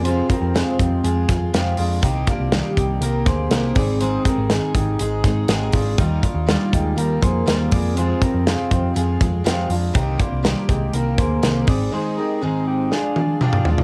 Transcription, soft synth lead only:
\new Staff \with { instrumentName = "Soft synth lead" } { \time 4/4 \key f \dorian \tempo 4 = 121 c'8 c'2. r8 | r4 g4 bes4 bes8 c'8~ | c'4. r2 r8 | r4 g8 aes8 bes2 |
c'8 c'2. r8 | r4 g8 aes8 bes8 bes4 c'8 | ees'4 c'4 d'4. r8 | }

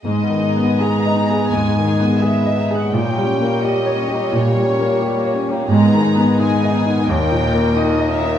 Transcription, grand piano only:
\new Staff \with { instrumentName = "Grand piano" } { \time 4/4 \key gis \minor \tempo 4 = 87 \tuplet 3/2 { gis,8 dis8 b8 gis'8 dis''8 gis'8 gis,8 dis8 b8 gis'8 dis''8 gis'8 } | \tuplet 3/2 { bes,8 g8 bes8 g'8 des''8 g'8 bes,8 g8 bes8 g'8 des''8 g'8 } | \tuplet 3/2 { gis,8 dis8 b8 dis'8 dis''8 dis'8 dis,8 ais,8 ais8 dis'8 dis''8 dis'8 } | }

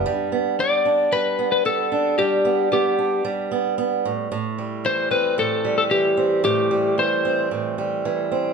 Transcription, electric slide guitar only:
\new Staff \with { instrumentName = "Electric slide guitar" } { \time 4/4 \key g \major \tempo 4 = 112 r4 d''4 b'8. b'16 a'4 | g'4 g'4 r2 | r4 c''8 b'8 a'8. a'16 g'4 | g'4 c''4 r2 | }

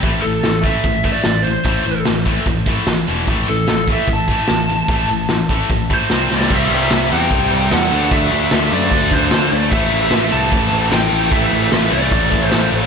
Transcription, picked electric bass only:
\new Staff \with { instrumentName = "Picked electric bass" } { \clef bass \time 4/4 \key a \minor \tempo 4 = 149 a,,8 a,,8 a,,4 a,,4 a,,4 | a,,8 a,,8 a,,4 a,,4 a,,8 e,,8 | a,,8 a,,8 a,,4 a,,4 a,,4 | a,,8 a,,8 a,,4 a,,4 c,8 c,8 |
c,8 c,8 c,8 e,8 c,8 c,8 e,8 d,8 | d,8 d,8 d,8 fis,8 d,8 d,8 d,8 d,8 | a,,8 a,,8 a,,8 c,8 a,,8 a,,8 a,,8 a,,8 | a,,8 a,,8 a,,8 c,8 a,,8 a,,8 a,,8 a,,8 | }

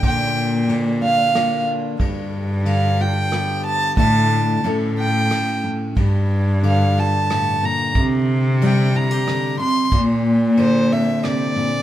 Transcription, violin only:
\new Staff \with { instrumentName = "Violin" } { \time 3/4 \key g \dorian \tempo 4 = 91 g''4 r8 f''4 r8 | r4 f''8 g''4 a''8 | a''4 r8 g''4 r8 | r4 f''8 a''4 bes''8 |
r4 g''8 bes''4 c'''8 | r4 c''8 e''8 d''4 | }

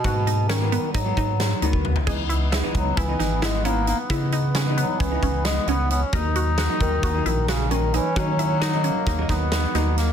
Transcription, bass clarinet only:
\new Staff \with { instrumentName = "Bass clarinet" } { \clef bass \time 9/8 \key cis \dorian \tempo 4. = 89 b,4 dis4 fis2 r8 | r4. fis8 e4 gis8 ais8 ais8 | r4. fis8 e4 gis8 b8 b8 | r4. dis4 dis8 cis8 dis8 e8 |
fis2.~ fis8 r4 | }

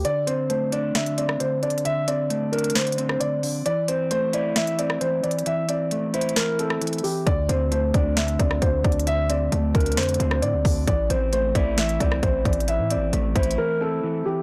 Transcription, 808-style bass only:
\new Staff \with { instrumentName = "808-style bass" } { \clef bass \time 4/4 \key a \phrygian \tempo 4 = 133 r1 | r1 | r1 | r1 |
d,8 d,4 d,4 d,8 d,8 d,8~ | d,4 d,8 d,8 f,8 d,8 a,16 d,16 d,8 | a,,8 a,,4 a,,4 c,8 a,,8 a,,8~ | a,,16 a,16. a,,16. a,,8 a,,8 r2 | }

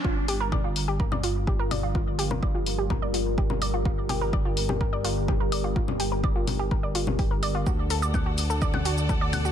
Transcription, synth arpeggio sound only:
\new Staff \with { instrumentName = "Synth arpeggio sound" } { \time 4/4 \key g \minor \tempo 4 = 126 f'16 r16 g'16 bes'16 d''16 f'16 r16 g'16 bes'16 d''16 f'16 r16 g'16 bes'16 d''16 f'16 | f'16 r16 g'16 bes'16 d''16 f'16 r16 g'16 bes'16 d''16 f'16 r16 g'16 bes'16 d''16 f'16 | f'16 r16 g'16 bes'16 d''16 f'16 r16 g'16 bes'16 d''16 f'16 r16 g'16 bes'16 d''16 f'16 | f'16 r16 g'16 bes'16 d''16 f'16 r16 g'16 bes'16 d''16 f'16 r16 g'16 bes'16 d''16 f'16 |
fis'16 r16 a'16 d''16 fis''16 fis'16 r16 a'16 d''16 fis''16 fis'16 r16 a'16 d''16 fis''16 fis'16 | }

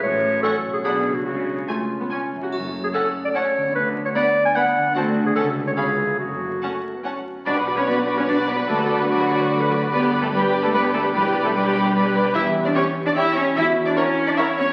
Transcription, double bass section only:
\new Staff \with { instrumentName = "Double bass section" } { \clef bass \time 3/4 \key fis \minor \tempo 4 = 147 a,,4 r4 b,,4 | cis,4 r2 | fis,,4 r2 | d,4 r2 |
d,4 cis,4 cis,4 | fis,,4 r2 | \key b \minor b,,2. | d,2. |
g,,2. | b,,2. | e,4 r2 | e,4 r2 | }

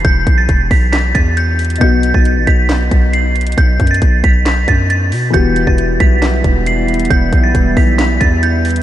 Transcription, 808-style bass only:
\new Staff \with { instrumentName = "808-style bass" } { \clef bass \time 4/4 \key e \minor \tempo 4 = 136 e,,8 b,,8 e,,8 b,,4 e,4. | b,,8. b,,8 a,,16 b,,4 b,,4. | b,,8 fis,8 b,,8 b,,4 fis,4 b,8 | e,,8. e,,8. b,,4 e,,4. |
e,,8 b,,8 e,,8 b,,4 e,4. | }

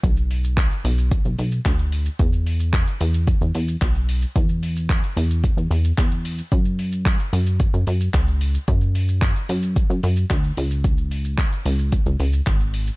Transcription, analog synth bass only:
\new Staff \with { instrumentName = "Analog synth bass" } { \clef bass \time 4/4 \key e \mixolydian \tempo 4 = 111 b,,4. b,,8. b,,16 b,,8 d,4 | e,4. e,8. e,16 e,8 b,,4 | e,4. e,8. e,16 e,8 e,4 | fis,4. fis,8. fis,16 fis,8 cis,4 |
fis,4. fis,8. fis,16 fis,8 d,8 cis,8~ | cis,4. cis,8. cis,16 cis,8 gis,,4 | }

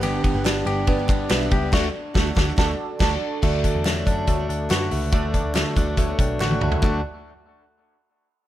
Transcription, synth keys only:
\new Staff \with { instrumentName = "Synth keys" } { \time 4/4 \key d \major \tempo 4 = 141 << { r1 | r1 | r1 | r4. d''8 fis''8 g''8 a''8 b''8 |
r1 | } \\ { <d' g' b' d''>8 r8 <d' g' b' d''>8. r16 <d' g' b' d''>8. r16 <d' g' b' e''>8. r16 | <d' fis' a' d''>8 r8 <d' fis' a'>8 <d' fis' a'>8 <d' fis' a' d'' a''>8 r8 <d' fis' a' d'' a''>8 r8 | <fis' a' d''>8. r16 <fis' a' cis''>8. r16 <fis' a' d''>8. r16 <fis' a' b'>8. r16 | <fis' a' d''>8. r16 <fis' a' d''>8. r16 <fis' a' cis''>8. r16 <fis' a' d''>8. r16 |
<fis' a' d''>8 r2. r8 | } >> }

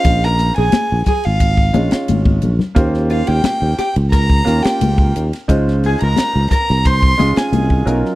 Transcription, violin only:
\new Staff \with { instrumentName = "Violin" } { \time 4/4 \key des \lydian \tempo 4 = 88 f''16 bes''8 aes''8. aes''16 f''4 r4 r16 | r8 f''16 g''8. g''8 bes''8. g''8. r8 | r8 aes''16 bes''8. bes''8 c'''8. aes''8. r8 | }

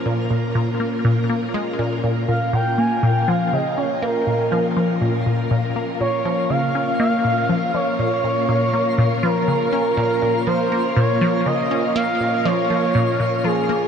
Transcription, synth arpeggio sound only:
\new Staff \with { instrumentName = "Synth arpeggio sound" } { \clef bass \time 4/4 \key bes \minor \tempo 4 = 121 bes,16 r16 bes,16 r16 bes,8 bes16 r16 bes,8 bes8 aes16 r16 bes,8 | bes,16 r16 bes,16 r16 bes,8 bes16 r16 bes,8 f8 des16 r16 des'8 | bes8 bes,8 f8 f8 bes,16 r16 bes,16 r16 bes,8 bes16 r16 | bes,8 f8 des16 r16 des'8 bes8 bes,8 f8 f8 |
bes,16 r16 bes,16 r16 bes,8 bes16 r16 bes,8 f8 des16 r16 des'8 | bes,16 r16 bes,16 r16 f8 bes16 r16 bes,8 f8 des16 r16 des'8 | bes8 bes,8 f8 f8 bes,16 r16 bes,16 r16 f8 bes16 r16 | }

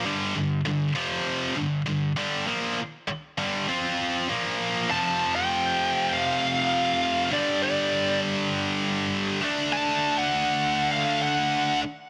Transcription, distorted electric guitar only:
\new Staff \with { instrumentName = "Distorted electric guitar" } { \clef bass \time 4/4 \key g \minor \tempo 4 = 99 <g, d g>8 <g, d>8 <g, d>8 <f, c f>4 <g, d>8 <g, d>8 <g, d g>8 | <bes, f bes>8 r4 <g, d g>8 <f c' f'>4 <bes, f bes>4 | \key f \mixolydian <f, c f>1 | <g, d g>2.~ <g, d g>8 <d a d'>8~ |
<d a d'>2.~ <d a d'>8 r8 | }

